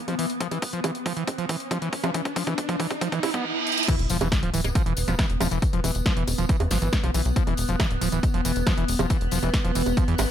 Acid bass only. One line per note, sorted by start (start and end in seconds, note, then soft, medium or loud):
0.08 0.15 F3 loud
0.19 0.26 E3 medium
0.41 0.48 F3 loud
0.51 0.58 E3 medium
0.73 0.80 F3 loud
0.84 0.91 E3 medium
1.06 1.13 F3 loud
1.17 1.24 E3 medium
1.38 1.45 F3 loud
1.49 1.56 E3 medium
1.71 1.78 F3 loud
1.82 1.89 E3 medium
2.04 2.11 F3 loud
2.14 2.22 E3 medium
2.36 2.43 F3 loud
2.47 2.54 E3 medium
2.69 2.76 F3 loud
2.80 2.87 E3 medium
3.01 3.08 F3 loud
3.12 3.19 E3 medium
3.23 3.30 E4 medium
3.34 3.45 B3 loud
3.88 3.95 E3 medium
4.10 4.17 F3 loud
4.21 4.28 E3 medium
4.43 4.50 F3 loud
4.54 4.61 E3 medium
4.75 4.82 F3 loud
4.86 4.93 E3 medium
5.08 5.15 F3 loud
5.19 5.26 E3 medium
5.40 5.48 F3 loud
5.51 5.58 E3 medium
5.73 5.80 F3 loud
5.84 5.91 E3 medium
6.06 6.13 F3 loud
6.17 6.24 E3 medium
6.38 6.45 F3 loud
6.49 6.56 E3 medium
6.71 6.78 F3 loud
6.82 6.89 E3 medium
7.04 7.11 F3 loud
7.14 7.22 E3 medium
7.36 7.43 F3 loud
7.47 7.54 E3 medium
7.69 7.76 F3 loud
7.80 7.87 E3 medium
8.01 8.08 F3 loud
8.12 8.19 E3 medium
8.34 8.41 F3 loud
8.45 8.52 E3 medium
8.67 8.74 F3 loud
8.77 8.85 E3 medium
8.99 9.06 F3 medium
9.10 9.17 E3 medium
9.32 9.39 F3 loud
9.43 9.50 E3 medium
9.64 9.72 F3 loud
9.75 9.82 E3 medium
9.97 10.04 F3 loud
10.08 10.15 E3 medium